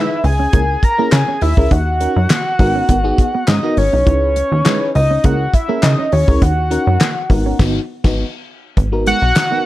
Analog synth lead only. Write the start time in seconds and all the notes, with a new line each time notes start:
Already playing: E5
0.25 G#5
0.84 A#5
1.13 G#5
1.42 E5
1.72 F#5
3.48 D#5
3.78 C#5
4.07 C#5
4.95 D#5
5.25 F#5
5.54 E5
5.83 D#5
6.12 C#5
6.42 F#5
9.07 F#5